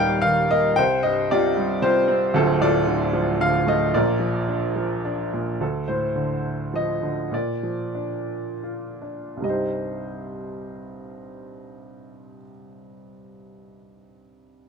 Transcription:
Already playing: D#1 D#2 A#2 D#3 G3 G4 A#4 D5 D#5 F5 G5
0.22 D#3 F5
0.51 A#3 D#5
0.76 C2 C5 G5
1.03 G2 D#5
1.31 C3 F4 G4 D5
1.57 G3
1.82 C3 F4 G4 C5
2.08 C4
2.34 D1 D2 C4 F4 A4
2.60 A2 F4 A4 D5
2.87 D3
3.13 F3
3.40 D3 F5
3.66 A3 D#5
3.94 A#1 A#2 F4 A#4 D5
4.20 F3
4.48 D4
4.76 F3
5.05 D4
5.34 A#2
5.60 D2 A4
5.88 A2 C5
6.16 D3
6.74 F3 D#5
7.03 D3
7.32 A#2 D5
7.63 F3
7.95 D4
8.63 F4
9.02 D4
9.37 C2 G2
9.42 C3 G3 D#5
9.47 D#4 C5

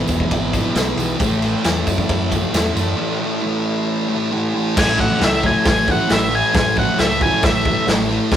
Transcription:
Already playing: E2 B2 E3 G#4 B4 E5
0.07 E1, kick, ride, tambourine
0.20 kick
0.31 G#1, kick, ride, tambourine
0.53 E3, kick, ride, tambourine
0.58 B2
0.75 B1 E2 B2, snare, ride, tambourine
0.80 E3
0.96 B1 E3, ride, tambourine
1.01 B2
1.18 A1 A2 E3 A4 C#5 E5, kick, ride, tambourine
1.24 A3
1.41 A3, ride, tambourine
1.46 E3
1.63 E2 A2 E3, snare, ride, tambourine
1.68 A3
1.87 F#2, kick, ride, tambourine
1.98 kick
2.09 F#2, kick, ride, tambourine
2.31 A3, kick, ride, tambourine
2.36 E3
2.52 E2 A2 E3, snare, ride, tambourine
2.58 A3
2.75 F#2 A3, ride, tambourine
2.81 E3
2.98 A2 E3 A3
3.20 A3
3.25 E3
3.42 A2 E3
3.46 A3
4.09 A3 E5
4.14 E3
4.31 A2 E3 F#5
4.36 A3
4.43 G#5
4.55 A3
4.59 E3
4.74 A1 A2 E3 A4 C#5 E5, kick, snare, crash
4.79 A3 G#5
4.99 A2 E3 A3 F#5, kick
5.20 C#2 A2 E3 A3, snare, open hi-hat
5.24 E5
5.43 A2 E3 A3 G#5, kick
5.65 A1 A2 E3 A3 G#5, kick, snare, open hi-hat
5.88 A2 E3 A3 F#5, kick
6.08 A1 A2 E3 A3 E5, snare, open hi-hat
6.30 A2 E3 A3
6.35 G#5
6.53 A1 A2 E3 A3 G#5, kick, snare, open hi-hat
6.75 A2 E3 A3 F#5, kick
6.98 C#2 A2 E3 A3 E5, snare, open hi-hat
7.20 A2 E3 A3 G#5, kick
7.42 A1 A2 E3 A3 E5, kick, snare, open hi-hat
7.65 A2 E3 A3, kick
7.87 A1 A2 E3 A3, snare, open hi-hat
8.10 A2 E3 A3
8.32 B1 B2 F#3 F#4 B4, kick, snare, open hi-hat

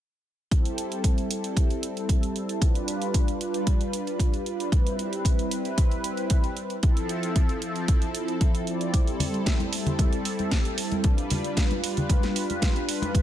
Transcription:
0.51 G3 C4 E4 A4, kick, closed hi-hat
0.65 closed hi-hat
0.78 closed hi-hat
0.92 closed hi-hat
1.04 kick, closed hi-hat
1.18 closed hi-hat
1.30 G3 C4 E4 A4, closed hi-hat
1.44 closed hi-hat
1.57 kick, closed hi-hat
1.70 closed hi-hat
1.83 closed hi-hat
1.97 closed hi-hat
2.09 kick, closed hi-hat
2.23 closed hi-hat
2.36 closed hi-hat
2.49 closed hi-hat
2.61 G3 D4 F4 B4, kick, closed hi-hat
2.75 closed hi-hat
2.88 closed hi-hat
3.02 closed hi-hat
3.14 kick, closed hi-hat
3.28 closed hi-hat
3.40 G3 D4 F4 B4, closed hi-hat
3.54 closed hi-hat
3.67 kick, closed hi-hat
3.81 closed hi-hat
3.93 closed hi-hat
4.07 closed hi-hat
4.20 kick, closed hi-hat
4.34 closed hi-hat
4.46 G3 D4 F4 B4, closed hi-hat
4.60 closed hi-hat
4.72 G3 C4 E4 B4, kick, closed hi-hat
4.87 closed hi-hat
4.99 closed hi-hat
5.13 closed hi-hat
5.25 kick, closed hi-hat
5.39 closed hi-hat
5.51 G3 C4 E4 B4, closed hi-hat
5.65 closed hi-hat
5.78 kick, closed hi-hat
5.91 closed hi-hat
6.04 closed hi-hat
6.17 closed hi-hat
6.30 kick, closed hi-hat
6.44 closed hi-hat
6.57 closed hi-hat
6.70 closed hi-hat
6.83 F3 C4 E4 A4, kick, closed hi-hat
6.97 closed hi-hat
7.09 closed hi-hat
7.23 closed hi-hat
7.36 kick, closed hi-hat
7.49 closed hi-hat
7.61 F3 C4 E4 A4, closed hi-hat
7.76 closed hi-hat
7.88 kick, closed hi-hat
8.02 closed hi-hat
8.15 closed hi-hat
8.28 closed hi-hat
8.41 kick, closed hi-hat
8.55 closed hi-hat
8.67 F3 C4 E4 D5, closed hi-hat
8.81 closed hi-hat
8.93 G3 C4 E4 A4, kick, closed hi-hat
9.07 closed hi-hat
9.20 open hi-hat, high conga, low conga
9.34 closed hi-hat
9.46 kick, snare, closed hi-hat
9.60 closed hi-hat, high conga
9.72 G3 C4 E4 A4, open hi-hat
9.86 closed hi-hat, low conga
9.99 kick, closed hi-hat, high conga
10.13 closed hi-hat
10.25 open hi-hat
10.39 closed hi-hat, high conga
10.51 kick, snare, closed hi-hat
10.65 closed hi-hat
10.78 open hi-hat
10.92 closed hi-hat, high conga
11.03 G3 D4 F4 B4, kick, closed hi-hat
11.18 closed hi-hat
11.30 open hi-hat, high conga, low conga
11.44 closed hi-hat
11.57 kick, snare, closed hi-hat
11.71 closed hi-hat, high conga
11.82 G3 D4 F4 B4, open hi-hat
11.97 closed hi-hat, low conga
12.09 kick, closed hi-hat, high conga
12.23 snare, closed hi-hat
12.36 open hi-hat
12.50 closed hi-hat, high conga
12.62 kick, snare, closed hi-hat
12.76 closed hi-hat
12.88 G3 D4 F4 B4, open hi-hat
13.02 closed hi-hat, high conga
13.14 G3 C4 E4 B4, kick, closed hi-hat

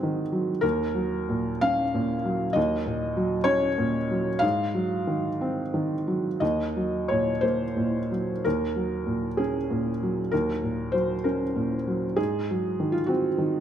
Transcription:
Already playing: G#2 D#3 F#3 C4 G#4 F#5 C6 D#6
0.03 D#3
0.32 F#3
0.61 D#2 A#4
0.95 F#3
1.29 A#2
1.61 C#4 F5
1.94 A#2
2.25 F#3
2.53 D#2 D#5
2.86 A#2
3.17 F#3
3.44 C#4 C#5
3.78 A#2
4.11 F#3
4.39 G#2 F5
4.74 F#3
5.07 D#3
5.41 C4
5.74 D#3
6.07 F#3
6.40 D#2 D#5
6.76 F#3
7.08 A#2 C#5
7.41 A#3 C5
7.77 A#2
8.11 F#3
8.45 D#2 A#4
8.76 F#3
9.07 A#2
9.37 C#4 G#4
9.70 A#2
10.03 F#3
10.31 D#2 A#4
10.63 A#2
10.92 F#3 C5
11.24 C#4 A#4
11.56 A#2
11.87 F#3
12.16 G#2 G#4
12.51 F#3
12.80 D#3
12.92 F4
13.06 C4 F#4
13.38 D#3

